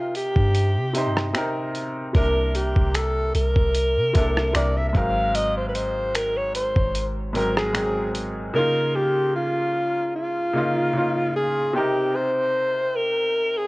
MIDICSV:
0, 0, Header, 1, 5, 480
1, 0, Start_track
1, 0, Tempo, 800000
1, 1289, Time_signature, 4, 2, 24, 8
1, 8204, End_track
2, 0, Start_track
2, 0, Title_t, "Alto saxophone"
2, 0, Program_c, 0, 65
2, 0, Note_on_c, 0, 65, 89
2, 93, Note_off_c, 0, 65, 0
2, 98, Note_on_c, 0, 67, 93
2, 789, Note_off_c, 0, 67, 0
2, 1295, Note_on_c, 0, 70, 99
2, 1534, Note_on_c, 0, 67, 84
2, 1543, Note_off_c, 0, 70, 0
2, 1772, Note_on_c, 0, 69, 96
2, 1781, Note_off_c, 0, 67, 0
2, 2008, Note_off_c, 0, 69, 0
2, 2012, Note_on_c, 0, 70, 106
2, 2706, Note_off_c, 0, 70, 0
2, 2733, Note_on_c, 0, 74, 100
2, 2864, Note_on_c, 0, 76, 91
2, 2873, Note_off_c, 0, 74, 0
2, 2930, Note_off_c, 0, 76, 0
2, 2933, Note_on_c, 0, 76, 76
2, 2976, Note_on_c, 0, 77, 108
2, 2985, Note_off_c, 0, 76, 0
2, 3213, Note_on_c, 0, 75, 118
2, 3222, Note_off_c, 0, 77, 0
2, 3340, Note_off_c, 0, 75, 0
2, 3344, Note_on_c, 0, 72, 89
2, 3409, Note_off_c, 0, 72, 0
2, 3413, Note_on_c, 0, 71, 74
2, 3452, Note_on_c, 0, 72, 91
2, 3461, Note_off_c, 0, 71, 0
2, 3694, Note_on_c, 0, 70, 96
2, 3703, Note_off_c, 0, 72, 0
2, 3823, Note_on_c, 0, 73, 89
2, 3832, Note_off_c, 0, 70, 0
2, 3931, Note_off_c, 0, 73, 0
2, 3935, Note_on_c, 0, 72, 94
2, 4234, Note_off_c, 0, 72, 0
2, 4413, Note_on_c, 0, 70, 89
2, 4531, Note_off_c, 0, 70, 0
2, 4544, Note_on_c, 0, 68, 81
2, 4868, Note_off_c, 0, 68, 0
2, 5133, Note_on_c, 0, 70, 121
2, 5372, Note_on_c, 0, 67, 105
2, 5381, Note_off_c, 0, 70, 0
2, 5609, Note_off_c, 0, 67, 0
2, 5612, Note_on_c, 0, 65, 97
2, 6067, Note_off_c, 0, 65, 0
2, 6095, Note_on_c, 0, 65, 92
2, 6788, Note_off_c, 0, 65, 0
2, 6816, Note_on_c, 0, 68, 90
2, 7036, Note_off_c, 0, 68, 0
2, 7056, Note_on_c, 0, 67, 105
2, 7295, Note_on_c, 0, 72, 118
2, 7304, Note_off_c, 0, 67, 0
2, 7776, Note_on_c, 0, 70, 122
2, 7785, Note_off_c, 0, 72, 0
2, 8144, Note_on_c, 0, 68, 101
2, 8153, Note_off_c, 0, 70, 0
2, 8204, Note_off_c, 0, 68, 0
2, 8204, End_track
3, 0, Start_track
3, 0, Title_t, "Grand piano"
3, 0, Program_c, 1, 0
3, 0, Control_c, 1, 64, 127
3, 0, Note_on_c, 1, 48, 76
3, 0, Note_on_c, 1, 60, 67
3, 0, Note_on_c, 1, 63, 69
3, 0, Note_on_c, 1, 70, 82
3, 560, Note_off_c, 1, 48, 0
3, 560, Note_on_c, 1, 48, 70
3, 569, Note_off_c, 1, 60, 0
3, 569, Note_on_c, 1, 60, 63
3, 577, Note_off_c, 1, 63, 0
3, 577, Note_on_c, 1, 63, 69
3, 587, Note_on_c, 1, 72, 82
3, 724, Note_off_c, 1, 48, 0
3, 729, Note_off_c, 1, 60, 0
3, 733, Note_off_c, 1, 63, 0
3, 738, Note_off_c, 1, 72, 0
3, 800, Note_on_c, 1, 48, 77
3, 809, Note_on_c, 1, 60, 71
3, 817, Note_on_c, 1, 63, 70
3, 826, Note_off_c, 1, 70, 0
3, 826, Note_on_c, 1, 70, 86
3, 1125, Note_off_c, 1, 48, 0
3, 1129, Note_off_c, 1, 60, 0
3, 1133, Note_off_c, 1, 63, 0
3, 1137, Note_off_c, 1, 70, 0
3, 1279, Note_on_c, 1, 48, 73
3, 1285, Note_on_c, 1, 58, 68
3, 1291, Note_on_c, 1, 62, 72
3, 1296, Control_c, 1, 64, 0
3, 1298, Note_on_c, 1, 64, 66
3, 1304, Note_on_c, 1, 70, 85
3, 1399, Control_c, 1, 64, 127
3, 1924, Note_off_c, 1, 48, 0
3, 1927, Note_off_c, 1, 58, 0
3, 1930, Note_off_c, 1, 62, 0
3, 1933, Note_off_c, 1, 64, 0
3, 1937, Note_off_c, 1, 70, 0
3, 2480, Note_on_c, 1, 48, 74
3, 2486, Note_on_c, 1, 58, 67
3, 2492, Note_on_c, 1, 62, 66
3, 2499, Note_on_c, 1, 64, 66
3, 2505, Note_on_c, 1, 69, 80
3, 2644, Note_off_c, 1, 48, 0
3, 2648, Note_off_c, 1, 58, 0
3, 2650, Note_off_c, 1, 62, 0
3, 2654, Note_off_c, 1, 64, 0
3, 2657, Note_off_c, 1, 69, 0
3, 2718, Note_on_c, 1, 48, 69
3, 2725, Note_on_c, 1, 58, 59
3, 2731, Note_on_c, 1, 62, 62
3, 2737, Note_on_c, 1, 64, 59
3, 2744, Note_on_c, 1, 70, 73
3, 2957, Note_on_c, 1, 44, 81
3, 2964, Note_off_c, 1, 48, 0
3, 2967, Note_off_c, 1, 58, 0
3, 2967, Note_on_c, 1, 54, 71
3, 2970, Note_off_c, 1, 62, 0
3, 2973, Note_off_c, 1, 64, 0
3, 2974, Note_off_c, 1, 70, 0
3, 2975, Note_on_c, 1, 60, 74
3, 2976, Control_c, 1, 64, 0
3, 2983, Note_on_c, 1, 70, 87
3, 3065, Control_c, 1, 64, 127
3, 3735, Note_off_c, 1, 44, 0
3, 3740, Note_off_c, 1, 54, 0
3, 3744, Note_off_c, 1, 60, 0
3, 3748, Note_off_c, 1, 70, 0
3, 4399, Note_on_c, 1, 44, 74
3, 4407, Note_on_c, 1, 54, 69
3, 4416, Note_on_c, 1, 60, 68
3, 4424, Note_on_c, 1, 70, 82
3, 4564, Note_off_c, 1, 44, 0
3, 4568, Note_off_c, 1, 54, 0
3, 4573, Note_off_c, 1, 60, 0
3, 4577, Note_off_c, 1, 70, 0
3, 4639, Note_on_c, 1, 44, 68
3, 4649, Note_on_c, 1, 54, 64
3, 4657, Note_on_c, 1, 60, 61
3, 4665, Note_on_c, 1, 68, 72
3, 4964, Note_off_c, 1, 44, 0
3, 4969, Note_off_c, 1, 54, 0
3, 4973, Note_off_c, 1, 60, 0
3, 4977, Note_off_c, 1, 68, 0
3, 5121, Note_on_c, 1, 49, 81
3, 5130, Note_on_c, 1, 58, 69
3, 5138, Control_c, 1, 64, 0
3, 5138, Note_on_c, 1, 63, 69
3, 5147, Note_on_c, 1, 65, 85
3, 5228, Control_c, 1, 64, 127
3, 5765, Note_off_c, 1, 49, 0
3, 5769, Note_off_c, 1, 58, 0
3, 5774, Note_off_c, 1, 63, 0
3, 5778, Note_off_c, 1, 65, 0
3, 6319, Note_on_c, 1, 49, 72
3, 6328, Note_on_c, 1, 58, 72
3, 6336, Note_on_c, 1, 63, 68
3, 6345, Note_on_c, 1, 65, 82
3, 6484, Note_off_c, 1, 49, 0
3, 6489, Note_off_c, 1, 58, 0
3, 6493, Note_off_c, 1, 63, 0
3, 6497, Note_off_c, 1, 65, 0
3, 6559, Note_on_c, 1, 49, 65
3, 6568, Note_on_c, 1, 58, 60
3, 6576, Note_on_c, 1, 63, 61
3, 6585, Note_on_c, 1, 65, 76
3, 6884, Note_off_c, 1, 49, 0
3, 6888, Note_off_c, 1, 58, 0
3, 6893, Note_off_c, 1, 63, 0
3, 6897, Note_off_c, 1, 65, 0
3, 7040, Note_on_c, 1, 48, 82
3, 7048, Note_on_c, 1, 60, 77
3, 7057, Control_c, 1, 64, 0
3, 7057, Note_on_c, 1, 63, 73
3, 7065, Note_on_c, 1, 70, 85
3, 7167, Control_c, 1, 64, 127
3, 7684, Note_off_c, 1, 48, 0
3, 7689, Note_off_c, 1, 60, 0
3, 7693, Note_off_c, 1, 63, 0
3, 7697, Note_off_c, 1, 70, 0
3, 8204, End_track
4, 0, Start_track
4, 0, Title_t, "808-style bass"
4, 0, Program_c, 2, 38
4, 216, Note_on_c, 2, 43, 104
4, 459, Note_on_c, 2, 48, 95
4, 468, Note_off_c, 2, 43, 0
4, 634, Note_on_c, 2, 43, 93
4, 644, Note_off_c, 2, 48, 0
4, 801, Note_off_c, 2, 43, 0
4, 1289, Note_on_c, 2, 36, 113
4, 1644, Note_off_c, 2, 36, 0
4, 1657, Note_on_c, 2, 36, 95
4, 1994, Note_off_c, 2, 36, 0
4, 2008, Note_on_c, 2, 36, 105
4, 2133, Note_off_c, 2, 36, 0
4, 2136, Note_on_c, 2, 36, 102
4, 2378, Note_on_c, 2, 48, 90
4, 2387, Note_off_c, 2, 36, 0
4, 2483, Note_off_c, 2, 48, 0
4, 2492, Note_on_c, 2, 36, 92
4, 2721, Note_off_c, 2, 36, 0
4, 2728, Note_on_c, 2, 36, 105
4, 2959, Note_off_c, 2, 36, 0
4, 2968, Note_on_c, 2, 32, 105
4, 4034, Note_off_c, 2, 32, 0
4, 4056, Note_on_c, 2, 32, 102
4, 5104, Note_off_c, 2, 32, 0
4, 8204, End_track
5, 0, Start_track
5, 0, Title_t, "Drums"
5, 89, Note_on_c, 9, 42, 69
5, 149, Note_off_c, 9, 42, 0
5, 216, Note_on_c, 9, 36, 94
5, 276, Note_off_c, 9, 36, 0
5, 328, Note_on_c, 9, 42, 79
5, 388, Note_off_c, 9, 42, 0
5, 568, Note_on_c, 9, 42, 78
5, 628, Note_off_c, 9, 42, 0
5, 701, Note_on_c, 9, 37, 100
5, 761, Note_off_c, 9, 37, 0
5, 808, Note_on_c, 9, 26, 114
5, 808, Note_on_c, 9, 42, 63
5, 868, Note_off_c, 9, 26, 0
5, 868, Note_off_c, 9, 42, 0
5, 1049, Note_on_c, 9, 42, 54
5, 1109, Note_off_c, 9, 42, 0
5, 1288, Note_on_c, 9, 42, 74
5, 1289, Note_on_c, 9, 36, 116
5, 1348, Note_off_c, 9, 42, 0
5, 1349, Note_off_c, 9, 36, 0
5, 1529, Note_on_c, 9, 42, 73
5, 1589, Note_off_c, 9, 42, 0
5, 1657, Note_on_c, 9, 36, 98
5, 1717, Note_off_c, 9, 36, 0
5, 1767, Note_on_c, 9, 42, 75
5, 1770, Note_on_c, 9, 26, 114
5, 1827, Note_off_c, 9, 42, 0
5, 1830, Note_off_c, 9, 26, 0
5, 2008, Note_on_c, 9, 42, 73
5, 2068, Note_off_c, 9, 42, 0
5, 2136, Note_on_c, 9, 36, 92
5, 2196, Note_off_c, 9, 36, 0
5, 2248, Note_on_c, 9, 42, 78
5, 2308, Note_off_c, 9, 42, 0
5, 2489, Note_on_c, 9, 42, 73
5, 2492, Note_on_c, 9, 36, 97
5, 2549, Note_off_c, 9, 42, 0
5, 2552, Note_off_c, 9, 36, 0
5, 2623, Note_on_c, 9, 37, 100
5, 2683, Note_off_c, 9, 37, 0
5, 2728, Note_on_c, 9, 42, 59
5, 2729, Note_on_c, 9, 26, 114
5, 2788, Note_off_c, 9, 42, 0
5, 2789, Note_off_c, 9, 26, 0
5, 2968, Note_on_c, 9, 36, 103
5, 2969, Note_on_c, 9, 42, 60
5, 3028, Note_off_c, 9, 36, 0
5, 3029, Note_off_c, 9, 42, 0
5, 3209, Note_on_c, 9, 42, 77
5, 3269, Note_off_c, 9, 42, 0
5, 3449, Note_on_c, 9, 42, 75
5, 3509, Note_off_c, 9, 42, 0
5, 3688, Note_on_c, 9, 42, 74
5, 3692, Note_on_c, 9, 26, 112
5, 3748, Note_off_c, 9, 42, 0
5, 3752, Note_off_c, 9, 26, 0
5, 3928, Note_on_c, 9, 42, 70
5, 3988, Note_off_c, 9, 42, 0
5, 4056, Note_on_c, 9, 36, 98
5, 4116, Note_off_c, 9, 36, 0
5, 4169, Note_on_c, 9, 42, 77
5, 4229, Note_off_c, 9, 42, 0
5, 4410, Note_on_c, 9, 42, 74
5, 4470, Note_off_c, 9, 42, 0
5, 4543, Note_on_c, 9, 37, 106
5, 4603, Note_off_c, 9, 37, 0
5, 4649, Note_on_c, 9, 26, 118
5, 4649, Note_on_c, 9, 42, 61
5, 4709, Note_off_c, 9, 26, 0
5, 4709, Note_off_c, 9, 42, 0
5, 4890, Note_on_c, 9, 42, 59
5, 4950, Note_off_c, 9, 42, 0
5, 8204, End_track
0, 0, End_of_file